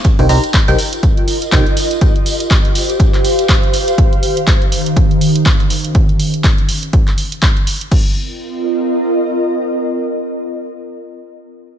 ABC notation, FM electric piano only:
X:1
M:4/4
L:1/16
Q:"Swing 16ths" 1/4=122
K:Cm
V:1 name="FM electric piano"
z [EGBcg] [EGBcb] z2 [EGBcg] z6 [EGBcg] z3 | z16 | z16 | z16 |
z16 | z16 |]